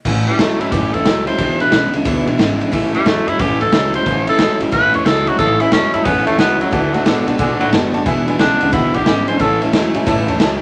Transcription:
0.05 A1 A2 E3 A3 C#4 E4, kick, crash
0.27 A2 E3 G3 A3 C#4 E4, ride
0.39 E2 A2 E3 F#3 A3 C#4 E4, snare, ride
0.60 F#2 A2 F#3 A3 C#4 E4, ride
0.72 F#2 A2 E3 A3 C#4 E4 G4, kick, ride
0.93 E2 A2 E3 A3 C#4 E4 A4, ride
1.04 C#2 A2 E3 F#3 A3 C#4 E4, snare, ride
1.26 A2 F#3 A3 C#4 E4 C5, ride
1.38 E1 E2 B2 E3 G#3 D4 E4, kick, ride
1.60 E2 B2 E3 G#3 D4 E4 B4, ride
1.72 B1 E2 C#3 E3 G#3 D4 E4, snare, ride
1.92 C#2 E2 C#3 E3 G#3 D4 E4, ride
2.05 D2 E2 B2 E3 G#3 D4 E4, kick, ride
2.26 B1 E2 B2 E3 G#3 D4 E4, ride
2.38 G#1 E2 C#3 E3 G#3 D4 E4, snare, ride
2.59 E2 C#3 E3 G#3 D4 E4, ride
2.72 A1 A2 E3 A3 C#4 E4, kick, ride
2.93 A2 E3 G3 A3 C#4 E4, ride
3.05 E2 A2 E3 F#3 A3 C#4 E4, snare, ride
3.27 F#2 A2 F#3 A3 C#4 E4, ride
3.39 F#2 A2 E3 A3 C#4 E4 G4, kick, ride
3.61 E2 A2 E3 A3 C#4 E4 A4, ride
3.72 C#2 A2 E3 F#3 A3 C#4 E4, snare, ride
3.94 A2 F#3 A3 C#4 E4 C5, ride
4.06 A1 A2 E3 A3 C#4 E4, kick, ride
4.27 A2 E3 A3 C#4 E4 A4, ride
4.38 E2 A2 E3 F#3 A3 C#4 E4, snare, ride
4.60 F#2 A2 F#3 A3 C#4 E4, ride
4.71 F#2 A2 E3 A3 C#4 E4 B4, kick, ride
4.92 E2 A2 E3 A3 C#4 E4 C#5, ride
5.05 C#2 A2 E3 F#3 A3 C#4 E4 A4, snare, ride
5.27 A2 F#3 A3 C#4 E4 F#4, ride
5.38 A1 A2 E3 A3 C#4 E4 A4 C#5 E5 A5, kick, ride
5.60 A2 E3 A3 C#4 E4 C#5 E5 G#5, ride
5.71 E2 A2 E3 F#3 A3 C#4 E4 C#5 E5 A5, snare, ride
5.93 F#2 A2 F#3 A3 C#4 E4 C#5 E5 A5, ride
6.05 F#2 A2 E3 A3 B3 C#4 E4 C#5 E5 G#5, kick, ride
6.26 E2 A2 E3 A3 C#4 E4 C#5 E5 A5, ride
6.38 C#2 A2 E3 F#3 A3 B3 C#4 E4 C#5 E5 A5, snare, ride
6.60 A2 F#3 A3 C#4 E4 C#5 E5 B5, ride
6.71 D2 D3 E3 A3 D4 F#4 D5 F#5 A5, kick, ride
6.93 D3 F#3 A3 D4 F#4 D5 F#5 A5, ride
7.04 A2 D3 A3 B3 D4 F#4 D5 F#5 A5, snare, ride
7.26 B2 D3 A3 B3 D4 F#4 D5 F#5 A5, ride
7.38 B2 D3 A3 D4 F#4 D5 F#5 G#5, kick, ride
7.60 A2 D3 F#3 A3 D4 F#4 D5 F#5 B5, ride
7.72 F#2 D3 A3 B3 D4 F#4 D5 F#5 A5, snare, ride
7.93 D3 A3 B3 D4 F#4 D5 F#5 A5, ride
8.06 E1 E2 B2 E3 G#3 D4 E4 B4 E5 G#5, kick, ride
8.27 E2 B2 E3 G#3 D4 E4 B4 E5 G#5, ride
8.39 B1 E2 C#3 E3 G#3 D4 E4 B4 E5 G#5, snare, ride
8.60 C#2 E2 C#3 E3 G#3 D4 E4 B4 E5 F#5, ride
8.72 D2 E2 B2 E3 G#3 D4 E4 B4 E5 F#5, kick, ride
8.94 B1 E2 B2 E3 G#3 D4 E4 G4 B4 E5 F#5, ride
9.06 G#1 E2 C#3 E3 G#3 D4 E4 B4 E5 G#5, snare, ride
9.27 E2 C#3 E3 G#3 D4 E4 B4 C5 E5 G#5, ride
9.39 A1 A2 E3 A3 C#4 E4 A4 C#5 E5 A5, kick, ride
9.61 A2 E3 A3 C#4 E4 C#5 E5 A5, ride
9.72 E2 A2 E3 F#3 A3 C#4 E4 C#5 E5 A5, snare, ride
9.94 F#2 A2 F#3 A3 C#4 E4 C#5 E5 G#5, ride
10.06 F#2 A2 E3 A3 C#4 E4 C#5 E5 A5, kick, ride
10.27 E2 A2 E3 A3 C#4 E4 C#5 E5 A5, ride
10.38 C#2 A2 E3 F#3 A3 C#4 E4 C#5 E5 A5, snare, ride

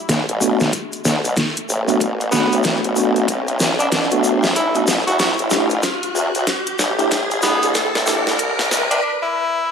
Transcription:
Already playing: riser
0.09 B1, kick, snare, closed hi-hat, shaker
0.28 A1, closed hi-hat, shaker
0.41 A3 B3 D4 F#4, shaker
0.60 snare, closed hi-hat, shaker
0.73 kick, closed hi-hat, shaker
0.92 closed hi-hat, shaker
1.05 D2, snare, shaker
1.24 B1, closed hi-hat, shaker
1.36 kick, snare, closed hi-hat, shaker
1.56 closed hi-hat, shaker
1.69 A1, shaker
1.88 A3 B3 D4 F#4, closed hi-hat, shaker
2.00 A1, kick, closed hi-hat, shaker
2.20 closed hi-hat, shaker
2.32 A3 B3 D4 F#4, snare, shaker
2.52 B1, closed hi-hat, shaker
2.63 B1, kick, snare, closed hi-hat, shaker
2.84 A1, closed hi-hat, shaker
2.96 A3 B3 D4 F#4, shaker
3.16 closed hi-hat, shaker
3.28 B1, kick, closed hi-hat, shaker
3.47 closed hi-hat, shaker
3.60 snare, shaker
3.79 D4, closed hi-hat, shaker
3.91 B1 D4, kick, snare, closed hi-hat, shaker
4.11 A3 B3 D4 F#4, closed hi-hat, shaker
4.24 shaker
4.43 snare, closed hi-hat, shaker
4.55 A1 E4, kick, closed hi-hat, shaker
4.75 A3 B3 D4 F#4, closed hi-hat, shaker
4.87 snare, shaker
5.07 E2 F#4, closed hi-hat, shaker
5.19 C2 F#4, kick, snare, closed hi-hat, shaker
5.38 A1, closed hi-hat, shaker
5.50 A3 D4 E4 G4, snare, shaker
5.70 closed hi-hat, shaker
5.82 kick, snare, closed hi-hat, shaker
6.03 closed hi-hat, shaker
6.15 E2, shaker
6.35 C2, closed hi-hat, shaker
6.47 kick, snare, closed hi-hat, shaker
6.66 closed hi-hat, shaker
6.79 A1, snare, shaker
6.99 A3 D4 E4 G4, closed hi-hat, shaker
7.11 A1, kick, snare, closed hi-hat, shaker
7.31 closed hi-hat, shaker
7.42 A3 B3 D4 E4 G4, snare, shaker
7.63 C2, closed hi-hat, shaker
7.74 C2, kick, snare, closed hi-hat, shaker
7.95 A1, snare, closed hi-hat, shaker
8.06 A3 D4 E4 G4, snare, shaker
8.27 snare, closed hi-hat, shaker
8.39 C2, kick, closed hi-hat, shaker
8.59 snare, closed hi-hat, shaker
8.71 snare, shaker
8.91 D4, closed hi-hat, shaker
9.03 D4
9.22 E4

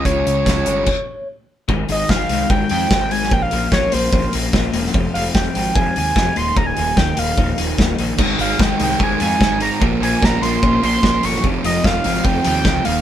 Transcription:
Already playing: C#3 G#3 C#4 F4 G#4
0.05 C#2 C#5, kick, closed hi-hat
0.26 C#2, closed hi-hat
0.46 C#2 C#3 G#3 C#4 F4 G#4, kick, snare, closed hi-hat
0.66 G1, closed hi-hat
0.86 kick, crash
1.67 G#1 G#2 D#3 G#3 D#4 C5 G5, kick
1.89 G#1 G#2 D#3 G#3 D#5, open hi-hat
2.09 G#1 G#2 D#3 G#3 F5, kick, snare
2.29 C2 G#2 D#3 G#3, open hi-hat
2.50 G#1 G#2 D#3 G#3 G5, kick
2.69 F2 G#2 D#3 G#3 G5, open hi-hat
2.90 G#1 G#2 D#3 G#3, kick, snare
3.11 G#2 D#3 G#3 G#5, open hi-hat
3.23 snare
3.31 A#1 A#2 F3 A#3 C#4 F5 G5, kick
3.42 F5
3.51 A#1 A#2 F3 A#3, open hi-hat
3.71 A#1 A#2 F3 A#3 C#5, kick, snare
3.91 A#1 A#2 F3 A#3 C5, open hi-hat
4.12 A#1 A#2 F3 A#3, kick
4.32 A#1 A#2 F3 A#3, open hi-hat
4.52 A#1 A#2 F3 A#3, kick, snare
4.72 E1 A#2 F3 A#3, open hi-hat
4.86 snare
4.93 F1 F2 C3 F3 G#3 D#4, kick
5.13 F1 F2 C3 F3 F5, open hi-hat
5.33 F1 F2 C3 F3 G5, kick, snare
5.54 G#1 F2 C3 F3, open hi-hat
5.75 F1 F2 C3 F3 G#5, kick
5.96 D#2 F2 C3 F3 G#5, open hi-hat
6.15 F1 F2 C3 F3, kick, snare
6.36 D#1 D#2 A#2 D#3 F3 A#4 F5 C6, open hi-hat
6.55 D#1 D#2 A#2 D#3 A#5, kick
6.66 G#5
6.76 D#1 D#2 A#2 D#3, open hi-hat
6.95 D#1 D#2 A#2 D#3 G5, kick, snare
7.16 D#1 D#2 A#2 D#3 F5, open hi-hat
7.37 D#1 D#2 A#2 D#3, kick
7.57 D#1 D#2 A#2 D#3, open hi-hat
7.78 D#1 D#2 A#2 D#3, kick, snare
7.98 A#1 D#2 A#2 D#3, open hi-hat
8.18 G#1 G#2 D#3 G#3 C5 G#5, kick, crash
8.39 G#1 G#2 D#3 G#3 F5, open hi-hat
8.58 G#1 G#2 D#3 G#3 G5, kick, snare
8.79 C2 G#2 D#3 G#3, open hi-hat
8.84 G5
8.99 G#1 G#2 D#3 G#3, kick
9.03 G#5
9.19 F2 G#2 D#3 G#3 G#5, open hi-hat
9.40 G#1 G#2 D#3 G#3, kick, snare
9.60 G#2 D#3 G#3 A#5, open hi-hat
9.80 A#1 A#2 F3 A#3 C#4 F5, kick
10.00 A#1 A#2 F3 A#3 G#5, open hi-hat
10.21 A#1 A#2 F3 A#3 A#5, kick, snare
10.42 A#1 A#2 F3 A#3 C6, open hi-hat
10.63 A#1 A#2 F3 A#3, kick
10.82 A#1 A#2 F3 A#3 C6, open hi-hat
11.03 A#1 A#2 F3 A#3, kick, snare
11.23 G1 A#2 F3 A#3 C#6, open hi-hat
11.35 snare
11.43 F1 F2 C3 F3 G#3 D#4 F5, kick
11.63 F1 F2 C3 F3 D#5, open hi-hat
11.83 F1 F2 C3 F3 F5, kick, snare
12.04 G#1 F2 C3 F3, open hi-hat
12.23 F1 F2 C3 F3 G5, kick
12.43 D#2 F2 C3 F3 G5, open hi-hat
12.62 C#2 F2 C3 F3, kick, snare
12.83 D#1 D#2 A#2 D#3 F3 A#4 F5, open hi-hat

